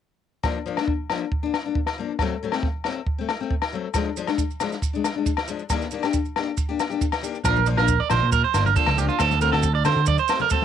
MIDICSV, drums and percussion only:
0, 0, Header, 1, 2, 480
1, 0, Start_track
1, 0, Key_signature, -2, "major"
1, 0, Tempo, 437956
1, 484, Time_signature, 4, 2, 24, 8
1, 11669, End_track
2, 0, Start_track
2, 0, Title_t, "Drums"
2, 477, Note_on_c, 9, 68, 56
2, 478, Note_on_c, 9, 36, 74
2, 478, Note_on_c, 9, 38, 59
2, 587, Note_off_c, 9, 38, 0
2, 587, Note_off_c, 9, 68, 0
2, 588, Note_off_c, 9, 36, 0
2, 844, Note_on_c, 9, 68, 50
2, 849, Note_on_c, 9, 38, 56
2, 953, Note_off_c, 9, 68, 0
2, 959, Note_off_c, 9, 38, 0
2, 960, Note_on_c, 9, 36, 74
2, 1069, Note_off_c, 9, 36, 0
2, 1201, Note_on_c, 9, 68, 55
2, 1204, Note_on_c, 9, 38, 52
2, 1310, Note_off_c, 9, 68, 0
2, 1314, Note_off_c, 9, 38, 0
2, 1442, Note_on_c, 9, 36, 70
2, 1552, Note_off_c, 9, 36, 0
2, 1685, Note_on_c, 9, 38, 57
2, 1687, Note_on_c, 9, 68, 53
2, 1794, Note_off_c, 9, 38, 0
2, 1796, Note_off_c, 9, 68, 0
2, 1923, Note_on_c, 9, 36, 75
2, 2032, Note_off_c, 9, 36, 0
2, 2044, Note_on_c, 9, 38, 56
2, 2048, Note_on_c, 9, 68, 54
2, 2154, Note_off_c, 9, 38, 0
2, 2157, Note_off_c, 9, 68, 0
2, 2398, Note_on_c, 9, 38, 62
2, 2400, Note_on_c, 9, 36, 77
2, 2400, Note_on_c, 9, 68, 58
2, 2508, Note_off_c, 9, 38, 0
2, 2510, Note_off_c, 9, 36, 0
2, 2510, Note_off_c, 9, 68, 0
2, 2761, Note_on_c, 9, 68, 54
2, 2766, Note_on_c, 9, 38, 55
2, 2871, Note_off_c, 9, 68, 0
2, 2875, Note_off_c, 9, 38, 0
2, 2882, Note_on_c, 9, 36, 74
2, 2883, Note_on_c, 9, 38, 23
2, 2992, Note_off_c, 9, 36, 0
2, 2993, Note_off_c, 9, 38, 0
2, 3114, Note_on_c, 9, 68, 52
2, 3122, Note_on_c, 9, 38, 54
2, 3224, Note_off_c, 9, 68, 0
2, 3232, Note_off_c, 9, 38, 0
2, 3361, Note_on_c, 9, 36, 75
2, 3470, Note_off_c, 9, 36, 0
2, 3603, Note_on_c, 9, 68, 55
2, 3604, Note_on_c, 9, 38, 58
2, 3712, Note_off_c, 9, 68, 0
2, 3714, Note_off_c, 9, 38, 0
2, 3843, Note_on_c, 9, 36, 75
2, 3953, Note_off_c, 9, 36, 0
2, 3964, Note_on_c, 9, 68, 58
2, 3968, Note_on_c, 9, 38, 58
2, 4074, Note_off_c, 9, 68, 0
2, 4077, Note_off_c, 9, 38, 0
2, 4316, Note_on_c, 9, 68, 56
2, 4318, Note_on_c, 9, 70, 69
2, 4322, Note_on_c, 9, 36, 76
2, 4323, Note_on_c, 9, 38, 62
2, 4425, Note_off_c, 9, 68, 0
2, 4428, Note_off_c, 9, 70, 0
2, 4432, Note_off_c, 9, 36, 0
2, 4433, Note_off_c, 9, 38, 0
2, 4566, Note_on_c, 9, 70, 52
2, 4675, Note_off_c, 9, 70, 0
2, 4684, Note_on_c, 9, 68, 55
2, 4690, Note_on_c, 9, 70, 22
2, 4693, Note_on_c, 9, 38, 55
2, 4794, Note_off_c, 9, 68, 0
2, 4800, Note_off_c, 9, 70, 0
2, 4802, Note_off_c, 9, 38, 0
2, 4804, Note_on_c, 9, 36, 72
2, 4805, Note_on_c, 9, 70, 69
2, 4913, Note_off_c, 9, 36, 0
2, 4915, Note_off_c, 9, 70, 0
2, 4939, Note_on_c, 9, 70, 21
2, 5043, Note_on_c, 9, 68, 53
2, 5047, Note_off_c, 9, 70, 0
2, 5047, Note_on_c, 9, 70, 59
2, 5050, Note_on_c, 9, 38, 55
2, 5152, Note_off_c, 9, 68, 0
2, 5157, Note_off_c, 9, 70, 0
2, 5160, Note_off_c, 9, 38, 0
2, 5177, Note_on_c, 9, 70, 20
2, 5179, Note_on_c, 9, 38, 21
2, 5286, Note_off_c, 9, 70, 0
2, 5286, Note_on_c, 9, 36, 75
2, 5289, Note_off_c, 9, 38, 0
2, 5292, Note_on_c, 9, 70, 70
2, 5396, Note_off_c, 9, 36, 0
2, 5402, Note_off_c, 9, 70, 0
2, 5424, Note_on_c, 9, 70, 22
2, 5528, Note_on_c, 9, 68, 55
2, 5529, Note_on_c, 9, 38, 61
2, 5532, Note_off_c, 9, 70, 0
2, 5532, Note_on_c, 9, 70, 58
2, 5638, Note_off_c, 9, 68, 0
2, 5639, Note_off_c, 9, 38, 0
2, 5642, Note_off_c, 9, 70, 0
2, 5767, Note_on_c, 9, 36, 78
2, 5767, Note_on_c, 9, 70, 69
2, 5876, Note_off_c, 9, 36, 0
2, 5877, Note_off_c, 9, 70, 0
2, 5885, Note_on_c, 9, 68, 59
2, 5897, Note_on_c, 9, 38, 63
2, 5994, Note_off_c, 9, 68, 0
2, 6005, Note_on_c, 9, 70, 55
2, 6007, Note_off_c, 9, 38, 0
2, 6115, Note_off_c, 9, 70, 0
2, 6128, Note_on_c, 9, 70, 21
2, 6238, Note_off_c, 9, 70, 0
2, 6243, Note_on_c, 9, 70, 72
2, 6247, Note_on_c, 9, 36, 72
2, 6247, Note_on_c, 9, 38, 60
2, 6249, Note_on_c, 9, 68, 56
2, 6353, Note_off_c, 9, 70, 0
2, 6356, Note_off_c, 9, 36, 0
2, 6356, Note_off_c, 9, 38, 0
2, 6358, Note_off_c, 9, 68, 0
2, 6374, Note_on_c, 9, 70, 21
2, 6377, Note_on_c, 9, 38, 22
2, 6478, Note_off_c, 9, 70, 0
2, 6478, Note_on_c, 9, 70, 52
2, 6487, Note_off_c, 9, 38, 0
2, 6588, Note_off_c, 9, 70, 0
2, 6604, Note_on_c, 9, 70, 21
2, 6609, Note_on_c, 9, 68, 54
2, 6618, Note_on_c, 9, 38, 58
2, 6714, Note_off_c, 9, 70, 0
2, 6719, Note_off_c, 9, 68, 0
2, 6723, Note_on_c, 9, 70, 70
2, 6728, Note_off_c, 9, 38, 0
2, 6730, Note_on_c, 9, 36, 76
2, 6833, Note_off_c, 9, 70, 0
2, 6840, Note_off_c, 9, 36, 0
2, 6853, Note_on_c, 9, 70, 22
2, 6962, Note_off_c, 9, 70, 0
2, 6971, Note_on_c, 9, 68, 57
2, 6973, Note_on_c, 9, 38, 57
2, 7081, Note_off_c, 9, 68, 0
2, 7083, Note_off_c, 9, 38, 0
2, 7204, Note_on_c, 9, 70, 77
2, 7207, Note_on_c, 9, 36, 77
2, 7314, Note_off_c, 9, 70, 0
2, 7316, Note_off_c, 9, 36, 0
2, 7448, Note_on_c, 9, 70, 58
2, 7452, Note_on_c, 9, 68, 56
2, 7453, Note_on_c, 9, 38, 60
2, 7558, Note_off_c, 9, 70, 0
2, 7562, Note_off_c, 9, 68, 0
2, 7563, Note_off_c, 9, 38, 0
2, 7576, Note_on_c, 9, 70, 21
2, 7685, Note_off_c, 9, 70, 0
2, 7686, Note_on_c, 9, 36, 75
2, 7687, Note_on_c, 9, 70, 74
2, 7796, Note_off_c, 9, 36, 0
2, 7796, Note_off_c, 9, 70, 0
2, 7805, Note_on_c, 9, 68, 58
2, 7809, Note_on_c, 9, 70, 21
2, 7812, Note_on_c, 9, 38, 59
2, 7915, Note_off_c, 9, 68, 0
2, 7919, Note_off_c, 9, 70, 0
2, 7922, Note_off_c, 9, 38, 0
2, 7932, Note_on_c, 9, 70, 54
2, 8041, Note_off_c, 9, 70, 0
2, 8054, Note_on_c, 9, 70, 21
2, 8162, Note_on_c, 9, 36, 81
2, 8162, Note_on_c, 9, 38, 66
2, 8164, Note_off_c, 9, 70, 0
2, 8164, Note_on_c, 9, 68, 61
2, 8164, Note_on_c, 9, 70, 88
2, 8272, Note_off_c, 9, 36, 0
2, 8272, Note_off_c, 9, 38, 0
2, 8273, Note_off_c, 9, 70, 0
2, 8274, Note_off_c, 9, 68, 0
2, 8285, Note_on_c, 9, 70, 25
2, 8297, Note_on_c, 9, 63, 62
2, 8395, Note_off_c, 9, 70, 0
2, 8396, Note_on_c, 9, 70, 67
2, 8407, Note_off_c, 9, 63, 0
2, 8506, Note_off_c, 9, 70, 0
2, 8521, Note_on_c, 9, 68, 58
2, 8529, Note_on_c, 9, 38, 59
2, 8631, Note_off_c, 9, 68, 0
2, 8634, Note_on_c, 9, 70, 84
2, 8638, Note_off_c, 9, 38, 0
2, 8642, Note_on_c, 9, 36, 82
2, 8744, Note_off_c, 9, 70, 0
2, 8751, Note_off_c, 9, 36, 0
2, 8873, Note_on_c, 9, 68, 62
2, 8877, Note_on_c, 9, 38, 61
2, 8881, Note_on_c, 9, 70, 67
2, 8884, Note_on_c, 9, 64, 61
2, 8983, Note_off_c, 9, 68, 0
2, 8987, Note_off_c, 9, 38, 0
2, 8991, Note_off_c, 9, 70, 0
2, 8994, Note_off_c, 9, 64, 0
2, 9119, Note_on_c, 9, 70, 85
2, 9121, Note_on_c, 9, 36, 83
2, 9122, Note_on_c, 9, 63, 59
2, 9229, Note_off_c, 9, 70, 0
2, 9231, Note_off_c, 9, 36, 0
2, 9232, Note_off_c, 9, 63, 0
2, 9361, Note_on_c, 9, 38, 62
2, 9361, Note_on_c, 9, 70, 70
2, 9362, Note_on_c, 9, 68, 58
2, 9471, Note_off_c, 9, 38, 0
2, 9471, Note_off_c, 9, 70, 0
2, 9472, Note_off_c, 9, 68, 0
2, 9477, Note_on_c, 9, 63, 62
2, 9477, Note_on_c, 9, 64, 55
2, 9494, Note_on_c, 9, 70, 23
2, 9587, Note_off_c, 9, 63, 0
2, 9587, Note_off_c, 9, 64, 0
2, 9600, Note_off_c, 9, 70, 0
2, 9600, Note_on_c, 9, 70, 82
2, 9603, Note_on_c, 9, 36, 88
2, 9710, Note_off_c, 9, 70, 0
2, 9712, Note_off_c, 9, 36, 0
2, 9714, Note_on_c, 9, 63, 55
2, 9715, Note_on_c, 9, 68, 61
2, 9724, Note_on_c, 9, 38, 60
2, 9824, Note_off_c, 9, 63, 0
2, 9825, Note_off_c, 9, 68, 0
2, 9831, Note_on_c, 9, 64, 59
2, 9834, Note_off_c, 9, 38, 0
2, 9844, Note_on_c, 9, 70, 64
2, 9941, Note_off_c, 9, 64, 0
2, 9954, Note_off_c, 9, 70, 0
2, 9965, Note_on_c, 9, 70, 23
2, 10068, Note_on_c, 9, 68, 60
2, 10074, Note_off_c, 9, 70, 0
2, 10080, Note_on_c, 9, 70, 81
2, 10081, Note_on_c, 9, 36, 81
2, 10083, Note_on_c, 9, 38, 64
2, 10177, Note_off_c, 9, 68, 0
2, 10189, Note_off_c, 9, 70, 0
2, 10190, Note_off_c, 9, 36, 0
2, 10193, Note_off_c, 9, 38, 0
2, 10203, Note_on_c, 9, 63, 62
2, 10207, Note_on_c, 9, 70, 23
2, 10211, Note_on_c, 9, 38, 25
2, 10313, Note_off_c, 9, 63, 0
2, 10316, Note_off_c, 9, 70, 0
2, 10317, Note_on_c, 9, 70, 61
2, 10321, Note_off_c, 9, 38, 0
2, 10426, Note_off_c, 9, 70, 0
2, 10444, Note_on_c, 9, 38, 58
2, 10444, Note_on_c, 9, 68, 58
2, 10553, Note_off_c, 9, 68, 0
2, 10553, Note_on_c, 9, 70, 84
2, 10554, Note_off_c, 9, 38, 0
2, 10560, Note_on_c, 9, 36, 82
2, 10662, Note_off_c, 9, 70, 0
2, 10670, Note_off_c, 9, 36, 0
2, 10793, Note_on_c, 9, 70, 66
2, 10794, Note_on_c, 9, 68, 61
2, 10803, Note_on_c, 9, 64, 64
2, 10806, Note_on_c, 9, 38, 59
2, 10903, Note_off_c, 9, 68, 0
2, 10903, Note_off_c, 9, 70, 0
2, 10912, Note_off_c, 9, 64, 0
2, 10916, Note_off_c, 9, 38, 0
2, 11025, Note_on_c, 9, 70, 90
2, 11040, Note_on_c, 9, 63, 59
2, 11041, Note_on_c, 9, 36, 83
2, 11134, Note_off_c, 9, 70, 0
2, 11149, Note_off_c, 9, 63, 0
2, 11151, Note_off_c, 9, 36, 0
2, 11156, Note_on_c, 9, 70, 27
2, 11266, Note_off_c, 9, 70, 0
2, 11267, Note_on_c, 9, 70, 69
2, 11280, Note_on_c, 9, 38, 64
2, 11286, Note_on_c, 9, 68, 60
2, 11376, Note_off_c, 9, 70, 0
2, 11389, Note_off_c, 9, 38, 0
2, 11392, Note_on_c, 9, 70, 26
2, 11395, Note_off_c, 9, 68, 0
2, 11396, Note_on_c, 9, 63, 61
2, 11396, Note_on_c, 9, 64, 56
2, 11502, Note_off_c, 9, 70, 0
2, 11505, Note_on_c, 9, 70, 91
2, 11506, Note_off_c, 9, 63, 0
2, 11506, Note_off_c, 9, 64, 0
2, 11519, Note_on_c, 9, 36, 83
2, 11615, Note_off_c, 9, 70, 0
2, 11629, Note_off_c, 9, 36, 0
2, 11669, End_track
0, 0, End_of_file